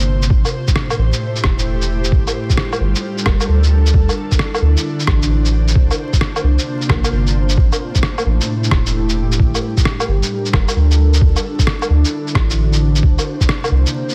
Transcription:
0.00 0.29 G1 medium
0.00 0.30 C3 medium
0.00 0.30 A#3 medium
0.00 1.05 D4 medium
0.00 2.86 C5 medium
0.23 shaker medium
0.30 0.44 A1 loud
0.30 2.12 A2 medium
0.30 kick loud
0.45 low woodblock soft
0.45 shaker soft
0.50 2.12 A3 medium
0.50 2.86 G4 medium
0.68 kick medium
0.68 shaker medium
0.76 cross-stick loud
0.90 2.12 E4 medium
0.90 low woodblock medium
0.90 shaker soft
0.98 1.12 A1 medium
1.13 shaker medium
1.36 shaker soft
1.44 2.11 E1 medium
1.44 kick loud
1.44 cross-stick loud
1.59 shaker medium
1.82 shaker soft
2.04 shaker medium
2.12 2.26 G1 loud
2.12 3.94 G3 medium
2.12 kick loud
2.27 3.94 F4 medium
2.27 low woodblock soft
2.27 shaker soft
2.41 4.68 A4 medium
2.48 8.32 D4 medium
2.48 kick medium
2.48 shaker soft
2.57 cross-stick loud
2.73 low woodblock medium
2.73 shaker soft
2.80 2.94 G1 medium
2.95 shaker soft
3.18 shaker soft
3.26 3.40 F1 medium
3.26 kick loud
3.26 cross-stick loud
3.26 low woodblock medium
3.41 low woodblock soft
3.41 shaker medium
3.48 3.93 D2 medium
3.64 shaker soft
3.86 shaker medium
3.94 4.08 D2 loud
3.94 5.76 D3 medium
3.94 kick loud
4.06 5.76 E4 medium
4.06 low woodblock soft
4.06 shaker soft
4.32 kick medium
4.32 shaker soft
4.39 cross-stick loud
4.54 low woodblock medium
4.54 shaker soft
4.62 4.76 D2 medium
4.77 10.02 C5 medium
4.77 shaker soft
5.00 shaker soft
5.07 5.75 A1 medium
5.07 kick medium
5.07 cross-stick loud
5.23 shaker medium
5.45 shaker soft
5.68 shaker medium
5.75 5.89 C2 loud
5.75 7.58 C3 medium
5.75 kick loud
5.91 low woodblock soft
5.91 shaker soft
5.95 7.57 A#3 medium
6.13 kick medium
6.13 shaker medium
6.18 7.57 F4 medium
6.18 cross-stick loud
6.36 low woodblock medium
6.36 shaker soft
6.44 6.58 C2 medium
6.59 shaker soft
6.82 shaker soft
6.89 7.03 A#1 medium
6.89 kick medium
6.89 cross-stick loud
6.89 low woodblock medium
7.04 low woodblock medium
7.04 shaker medium
7.12 7.57 G1 medium
7.27 shaker soft
7.49 shaker medium
7.58 7.71 A1 loud
7.58 9.40 A2 medium
7.58 kick loud
7.66 9.39 A3 medium
7.72 low woodblock soft
7.72 shaker soft
7.95 9.39 E4 medium
7.95 kick medium
7.95 shaker medium
8.03 cross-stick loud
8.18 low woodblock medium
8.18 shaker soft
8.26 8.40 A1 medium
8.41 10.14 G4 medium
8.41 shaker medium
8.64 shaker soft
8.71 9.38 E1 medium
8.71 kick medium
8.71 cross-stick loud
8.87 shaker medium
9.09 shaker soft
9.32 shaker medium
9.39 9.53 G1 loud
9.39 11.21 G3 medium
9.39 kick loud
9.55 low woodblock soft
9.55 shaker soft
9.65 14.15 D4 medium
9.77 kick medium
9.77 shaker medium
9.84 11.21 A#4 medium
9.84 cross-stick loud
10.00 low woodblock medium
10.00 shaker soft
10.08 10.22 G1 medium
10.23 11.95 A4 medium
10.23 shaker medium
10.46 shaker soft
10.53 10.67 F1 medium
10.53 kick loud
10.53 cross-stick loud
10.53 low woodblock medium
10.68 low woodblock medium
10.68 shaker medium
10.76 11.21 D2 medium
10.91 shaker soft
11.14 shaker medium
11.21 11.35 D2 loud
11.21 13.03 D3 medium
11.21 kick loud
11.36 low woodblock soft
11.36 shaker soft
11.59 kick medium
11.59 shaker medium
11.63 13.03 E4 medium
11.63 cross-stick loud
11.82 low woodblock medium
11.82 shaker soft
11.90 12.03 D2 medium
12.05 14.15 C5 medium
12.05 shaker medium
12.28 shaker soft
12.35 13.02 A1 medium
12.35 kick loud
12.35 cross-stick loud
12.50 shaker medium
12.73 shaker soft
12.96 shaker medium
13.03 13.17 C2 loud
13.03 14.15 C3 medium
13.03 kick loud
13.19 low woodblock soft
13.19 shaker soft
13.23 14.15 A#3 medium
13.41 kick medium
13.41 shaker medium
13.49 cross-stick loud
13.64 low woodblock medium
13.64 shaker soft
13.71 13.85 C2 medium
13.87 shaker medium
14.09 shaker soft

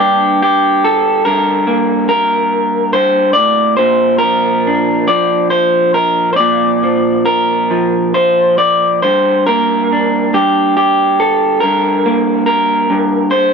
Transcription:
0.00 1.25 G2 medium
0.00 1.67 A#3 medium
0.00 2.96 D4 soft
0.00 0.41 G4 medium
0.43 1.25 G4 medium
0.84 2.10 A4 medium
1.25 2.93 G2 medium
1.25 2.08 A#4 medium
1.67 3.80 A#3 medium
2.09 2.93 A#4 loud
2.93 3.36 G2 medium
2.93 3.33 C5 loud
3.33 3.78 A2 medium
3.33 3.76 D5 loud
3.77 6.34 A#2 medium
3.77 4.18 C5 medium
4.18 5.07 A#4 loud
4.23 5.09 F3 medium
4.67 6.36 D4 soft
5.08 6.84 F3 medium
5.08 5.50 D5 loud
5.50 5.94 C5 medium
5.94 6.32 A#4 medium
6.33 6.36 C5 medium
6.33 7.25 D5 medium
6.40 8.99 A#2 medium
6.84 7.71 F3 medium
7.26 8.14 A#4 medium
7.71 9.07 F3 medium
8.14 8.58 C5 medium
8.58 9.02 D5 medium
9.02 10.34 G2 medium
9.02 9.46 C5 medium
9.47 11.58 A#3 medium
9.47 10.34 A#4 medium
9.92 13.34 D4 soft
10.34 11.62 G2 medium
10.34 10.76 G4 medium
10.77 11.60 G4 medium
11.20 12.48 A4 medium
11.60 12.89 G2 medium
11.60 12.45 A#4 medium
12.06 13.54 A#3 medium
12.46 13.30 A#4 medium
12.90 13.54 G2 medium
13.31 13.54 C5 medium

